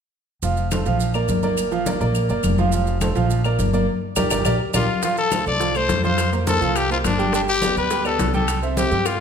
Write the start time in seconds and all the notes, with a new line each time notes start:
0.42 F1 F3 F4 F5, high conga, maracas
0.57 high conga, maracas
0.71 A3 A4 C5, high conga, claves, maracas
0.86 A#1 F3 F4 F5, high conga, maracas
1.00 high conga, maracas
1.14 A#3 A#4 D5, high conga, claves, maracas
1.28 G1, high conga, maracas
1.43 A#3 A#4 D5, high conga, maracas
1.57 high conga, claves, maracas
1.71 F3 F4 F5, high conga, maracas
1.86 A#3 A#4 D5, high conga, maracas
2.00 A#1 A#3 A#4 D5, high conga, maracas
2.15 high conga, claves, maracas
2.29 G1 A#3 A#4 D5, high conga, maracas
2.43 F1, high conga, claves, maracas
2.58 F3 F4 F5, high conga, maracas
2.72 F3 F4 F5, high conga, maracas
2.87 high conga, maracas
3.01 A3 A4 C5, high conga, claves, maracas
3.15 A#1 F3 F4 F5, high conga, maracas
3.30 high conga, maracas
3.44 A#3 A#4 D5, high conga, claves, maracas
3.59 G1, high conga, maracas
3.73 A#3 A#4 D5, high conga, maracas
4.16 G1 G4 A#4 D5, high conga, claves, maracas
4.31 G1 G4 A#4 D5, high conga, claves, maracas
4.45 A#1 G4 A#4 D5, high conga, claves, maracas
4.74 A#1 F4 G4 A#4 D5, high conga, claves, maracas
5.02 F3 F4 F5, high bongo, high conga, maracas
5.17 A4, high bongo, high conga, maracas
5.31 A3 A4 C5, high bongo, high conga, claves, maracas
5.46 C2 D5, high conga, maracas
5.60 F3 F4 F5, high bongo, high conga, maracas
5.75 A3 A4 C5, high bongo, high conga, claves, maracas
5.89 F2, high bongo, low bongo, high conga, maracas
6.03 F3 F4 C5 F5, high bongo, high conga, maracas
6.18 high bongo, high conga, claves, maracas
6.33 A#3 A#4 C5, high bongo, high conga, maracas
6.46 A#3 A4 A#4 C5, high bongo, high conga, maracas
6.61 C2 F3 F4 F5, high conga, maracas
6.76 G4, high bongo, high conga, claves, maracas
6.90 A#3 F4 A#4 C5, high bongo, high conga, maracas
7.04 G1 D4, high bongo, low bongo, high conga, claves, maracas
7.18 G3 G4 G5, high bongo, maracas
7.33 G3 D4 G4 G5, high bongo, maracas
7.47 G4, high bongo, high conga, maracas
7.62 B3 B4 D5, high bongo, high conga, claves, maracas
7.76 D2 B4, high conga, maracas
7.90 G3 G4 G5, high bongo, high conga, maracas
8.05 B3 A4 B4 D5, high bongo, high conga, claves, maracas
8.19 C2, high bongo, low bongo, high conga, maracas
8.34 G3 G4 A4 G5, high bongo, high conga, maracas
8.48 high bongo, high conga, claves, maracas
8.62 C4 C5 E5, high bongo, high conga, maracas
8.77 C4 G4 C5 E5, high bongo, high conga, maracas
8.91 G2 G3 G4 G5, high conga, maracas
9.05 F4, high bongo, high conga, claves, maracas